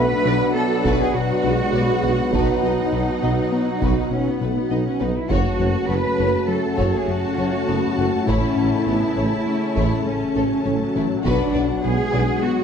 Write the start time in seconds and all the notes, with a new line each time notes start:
Already playing: B2 F#3 A3 B3 D4 E4 F#4 B4 E5 F#5
0.24 B1 B2 F#3 D4 B4 D5
0.54 B3 A4
0.84 B1 B2 B3 F#4 B4, taiko
1.01 G#4
1.14 B2 F#3 F#4
1.43 B1 B2 G#3 D4 B4
1.73 B1 B2 D4 B4 D5
2.03 B1 B2 F#4 B4
2.32 B1 B2 F#3 B3 D#4 F#4 B4 A5, taiko
2.62 B1 B2 D#4 B4 D#5
2.92 B1 B2 B4
3.22 B1 B2 D#4 B4 D#5
3.52 B3
3.81 B1 B2 B3 F#4 B4, taiko
4.11 B2 C#4
4.28 B3
4.41 B1 B2 A3 D#4 B4
4.57 B3
4.71 B1 B2 D#4 B4 D#5
4.87 C#4
5.00 B1 B2 D#4 F#4 B4
5.17 E4
5.29 F#1 F#2 C#3 F#3 A3 C#4 F#4 C#5 A5, taiko
5.59 F#1 F#2 A3 C#5
5.89 F#1 F#2 A3 A4 B4 C#5
6.19 F#1 F#2 A3 C#5
6.48 F#3 A3 A4
6.78 F#1 F#2 F#3 F#4 C#5, taiko
6.95 G#4
7.08 F#2 C#4 F#4
7.38 F#1 F#2 A3 A4 C#5
7.68 F#1 F#2 A3 B3 C#5
7.98 F#1 F#2 A3 F#4 C#5 F#5
8.27 A1 A2 A3 C#4 E4 A4 C#5, taiko
8.57 A1 A2 C#4 C#5
8.86 A1 A2 B3 C#4 A4 C#5
9.16 A1 A2 A3 C#4 C#5
9.46 A3 C#4
9.76 A1 A2 G#3 A3 E4 C#5, taiko
10.06 A2 A3 C#4
10.35 A1 A2 F#3 C#4 A4 C#5
10.65 A1 A2 C#4 C#5
10.95 A1 A2 E4 A4 C#5
11.23 B1 B2 F#3 B3 D4 F#4 B4 F#5, taiko
11.54 B1 B2 D4 B4 D5
11.83 B1 B2 G#3 D4 G#4 B4
12.12 B1 B2 D4 B4 D5
12.43 B3 F#4